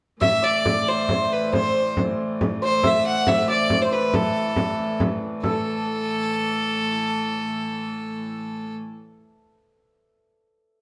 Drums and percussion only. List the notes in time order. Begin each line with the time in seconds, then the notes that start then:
0.22 frame drum
0.66 frame drum
1.09 frame drum
1.53 frame drum
1.97 frame drum
2.41 frame drum
2.83 frame drum
3.27 frame drum
3.70 frame drum
4.14 frame drum
4.56 frame drum
4.79 frame drum
5.00 frame drum
5.22 frame drum
5.43 frame drum